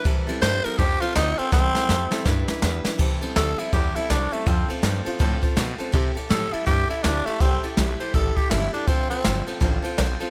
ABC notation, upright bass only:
X:1
M:4/4
L:1/8
Q:"Swing" 1/4=163
K:C
V:1 name="Upright bass" clef=bass
C,, z G,, z F,, z D,, z | C,, z F,, z G,, z E,, z | C,, z D,, z E,, z C,, z | F,, z G,, z A,, z B,, z |
C, z A,, z G,, z D,, z | C,, z B,,, z A,,, z G,,, z | F,,, z G,,, z A,,, z B,,, z |]